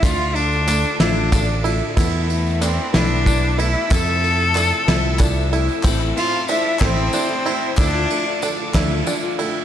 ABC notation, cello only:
X:1
M:6/8
L:1/8
Q:3/8=62
K:Am
V:1 name="Cello"
F D2 D2 z | z A, C D2 E | A4- A z | z F E C3 |
D2 z4 |]